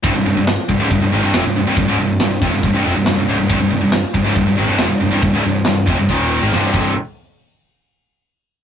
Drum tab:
CC |----------------|----------------|----------------|--------------x-|
HH |o---o---o---o---|o---o---o---o---|o---o---o---o---|o---o---o-------|
SD |----o-------o---|----o--o----o---|----o--o----o---|----o-------o---|
BD |o-----o-o-------|o-----o-o-------|o-----o-o-------|o-----o-o-----o-|

CC |----------------|
HH |----------------|
SD |----------------|
BD |----------------|